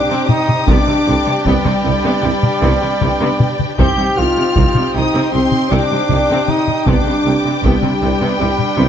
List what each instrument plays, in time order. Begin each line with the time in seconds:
Already playing: string section C4 G4 C5 G5, trumpet D4, viola section D#4, violin section G4 C5 D6, french horn section D5
0.09 cello section C3, viola section C4
0.28 french horn section D#4, trumpet D#4, violin section D#6, taiko mid
0.48 taiko mid
0.67 tuba C2, double bass section C2, cello section C3, viola section B3 D4, french horn section D4, trumpet D4, string section D4 B4, violin section D5 D6, taiko
0.87 cello section C3, viola section G3
1.07 tuba C2, double bass section C2, cello section C3, viola section D3
1.26 cello section C3, viola section G3
1.44 tuba C2, double bass section C2, cello section C3, trumpet G3, french horn section G3, viola section B3, violin section G5, taiko
1.65 cello section C3, viola section G3, taiko mid
1.84 tuba C2, double bass section C2, cello section C3, viola section D3
2.04 cello section C3, viola section B3
2.23 tuba C2, double bass section C2, cello section C3, viola section G3
2.43 taiko mid
2.62 tuba C2, double bass section C2, cello section C3, viola section B3
2.81 cello section C3, viola section G3
3.01 tuba C2, double bass section C2, cello section C3, viola section D3, taiko mid
3.20 cello section C3, viola section B3
3.40 taiko mid
3.59 taiko mid
3.78 tuba C2, double bass section C2, timpani C3, cello section C3, string section C4 G4 C5 G5, viola section C4 D#4, trumpet G4, violin section G4 G5 G6, french horn section G4, taiko
3.98 cello section C3, viola section G3
4.16 tuba C2, double bass section C2, cello section C3, viola section D#3, trumpet F4, french horn section F4, violin section F6
4.36 cello section C3, viola section G3
4.55 tuba C2, double bass section C2, cello section C3, viola section C4, taiko
4.75 cello section C3, viola section G3, taiko mid
4.95 tuba C2, double bass section C2, cello section C3, viola section D#3, trumpet D#4, french horn section D#4, violin section D#6
5.13 cello section C3, viola section C4
5.32 tuba C2, double bass section C2, cello section C3, viola section G3, french horn section C4, trumpet C4, violin section C6
5.52 taiko mid
5.71 tuba C2, double bass section C2, cello section C3, viola section C4, trumpet D4, french horn section D5, violin section D6
5.91 cello section C3, viola section G3
6.09 tuba C2, double bass section C2, cello section C3, viola section D#3, taiko mid
6.29 cello section C3, viola section C4
6.47 french horn section D#4, trumpet D#4, violin section D#6, taiko mid
6.67 taiko mid
6.86 tuba C2, double bass section C2, timpani C3, cello section C3, viola section B3 D4, french horn section D4, trumpet D4, string section D4 B4, violin section D6, taiko
7.06 cello section C3, viola section G3
7.25 double bass section C2, tuba C2, cello section C3, viola section D3
7.44 cello section C3, viola section G3
7.63 double bass section C2, tuba C2, cello section C3, trumpet G3, french horn section G3, viola section B3, violin section G5, taiko
7.82 cello section C3, viola section G3, taiko mid
8.02 tuba C2, double bass section C2, cello section C3, viola section D3
8.20 cello section C3, viola section B3
8.39 tuba C2, double bass section C2, cello section C3, viola section G3
8.60 taiko mid
8.78 tuba C2, double bass section C2, cello section C3, viola section B3